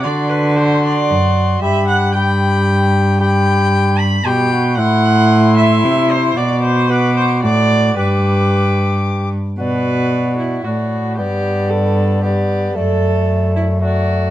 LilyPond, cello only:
\new Staff \with { instrumentName = "Cello" } { \clef bass \time 3/4 \key g \major \tempo 4 = 113 d2 fis,4 | g,2.~ | g,2 b,4 | a,2 c4 |
b,2 a,4 | g,2~ g,8 r8 | b,2 a,4 | g,2. |
fis,2. | }